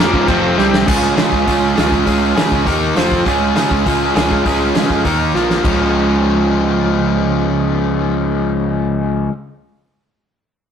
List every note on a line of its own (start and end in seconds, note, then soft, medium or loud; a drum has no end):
0.00 0.12 F2 loud
0.00 0.28 A#2 medium
0.00 0.26 F3 medium
0.00 0.28 A#3 loud
0.00 0.27 C#4 medium
0.00 0.27 F4 loud
0.00 0.27 A#4 loud
0.14 0.27 G#2 loud
0.14 kick medium
0.27 0.55 F1 loud
0.27 0.56 F2 loud
0.27 0.55 C3 medium
0.27 0.56 F3 loud
0.27 0.57 C4 loud
0.27 0.57 F4 loud
0.27 0.57 C5 loud
0.27 kick loud
0.27 crash medium
0.57 0.84 C2 medium
0.57 0.86 C3 loud
0.57 0.87 G3 loud
0.57 0.87 C4 loud
0.57 0.87 G4 loud
0.57 snare medium
0.74 snare loud
0.86 1.12 C#2 medium
0.86 1.17 C#3 medium
0.86 1.17 G#3 medium
0.86 1.16 C#4 medium
0.86 1.15 F4 medium
0.86 1.15 G#4 medium
0.86 kick loud
0.86 crash loud
1.16 1.29 C#3 medium
1.16 1.44 C#3 medium
1.16 1.45 G#3 loud
1.16 1.46 C#4 loud
1.16 1.46 F4 loud
1.16 1.47 G#4 loud
1.16 snare loud
1.16 open hi-hat medium
1.32 1.44 C#2 medium
1.32 kick medium
1.46 1.72 C#2 loud
1.46 1.77 C#3 medium
1.46 1.76 G#3 medium
1.46 1.76 C#4 medium
1.46 1.75 F4 medium
1.46 1.74 G#4 loud
1.46 kick loud
1.46 open hi-hat medium
1.76 2.01 C#2 medium
1.76 2.04 C#3 medium
1.76 2.05 G#3 medium
1.76 2.05 C#4 medium
1.76 2.06 F4 medium
1.76 2.07 G#4 medium
1.76 snare loud
1.76 open hi-hat medium
1.92 kick medium
2.05 2.31 C#2 medium
2.05 2.37 C#3 medium
2.05 2.37 G#3 medium
2.05 2.36 C#4 medium
2.05 2.36 F4 medium
2.05 2.35 G#4 loud
2.05 kick medium
2.05 open hi-hat medium
2.36 2.49 C#3 medium
2.36 2.65 C#3 medium
2.36 2.66 G#3 medium
2.36 2.65 C#4 loud
2.36 2.65 F4 loud
2.36 2.65 G#4 loud
2.36 snare loud
2.36 open hi-hat medium
2.52 2.64 C#2 medium
2.52 kick medium
2.65 2.91 D#2 loud
2.65 2.94 D#3 medium
2.65 2.94 A#3 loud
2.65 2.95 D#4 loud
2.65 2.95 A#4 loud
2.65 kick medium
2.65 open hi-hat medium
2.96 3.20 F1 medium
2.96 3.24 F3 loud
2.96 3.25 C4 loud
2.96 3.25 F4 loud
2.96 3.25 C5 loud
2.96 snare loud
2.96 open hi-hat medium
3.12 kick medium
3.26 3.51 C#2 loud
3.26 3.57 C#3 medium
3.26 3.56 G#3 medium
3.26 3.56 C#4 medium
3.26 3.55 F4 medium
3.26 3.54 G#4 medium
3.26 kick loud
3.26 open hi-hat medium
3.56 3.68 C#3 medium
3.56 3.84 C#3 medium
3.56 3.86 G#3 medium
3.56 3.86 C#4 medium
3.56 3.87 F4 loud
3.56 3.87 G#4 loud
3.56 snare medium
3.56 open hi-hat medium
3.71 3.83 C#2 medium
3.71 kick medium
3.86 4.10 C#2 medium
3.86 4.16 C#3 medium
3.86 4.16 G#3 medium
3.86 4.16 C#4 medium
3.86 4.15 F4 medium
3.86 4.14 G#4 medium
3.86 kick medium
3.86 open hi-hat medium
4.15 4.40 C#2 medium
4.15 4.44 C#3 medium
4.15 4.44 G#3 medium
4.15 4.45 C#4 medium
4.15 4.46 F4 medium
4.15 4.46 G#4 medium
4.15 snare loud
4.15 open hi-hat medium
4.31 kick medium
4.45 4.70 C#2 medium
4.45 4.76 C#3 medium
4.45 4.75 G#3 medium
4.45 4.74 C#4 medium
4.45 4.74 F4 medium
4.45 4.73 G#4 medium
4.45 kick medium
4.45 open hi-hat medium
4.74 4.87 C#3 medium
4.74 5.04 C#3 medium
4.74 5.04 G#3 medium
4.74 5.04 C#4 medium
4.74 5.04 F4 loud
4.74 5.03 G#4 loud
4.74 snare loud
4.74 open hi-hat medium
4.90 5.02 F2 medium
4.90 kick medium
5.05 5.29 D#2 medium
5.05 5.33 D#3 medium
5.05 5.34 A#3 medium
5.05 5.34 D#4 medium
5.05 5.34 A#4 medium
5.05 kick medium
5.05 open hi-hat medium
5.34 5.58 A#1 medium
5.34 5.63 A#2 medium
5.34 5.63 F3 medium
5.34 5.64 A#3 loud
5.34 5.64 F4 loud
5.34 snare medium
5.50 snare medium
5.63 9.26 C#2 medium
5.63 9.28 C#3 medium
5.63 9.30 F3 medium
5.63 9.30 G#3 medium
5.63 9.32 C#4 medium
5.63 kick loud
5.63 crash medium
5.67 9.32 F4 medium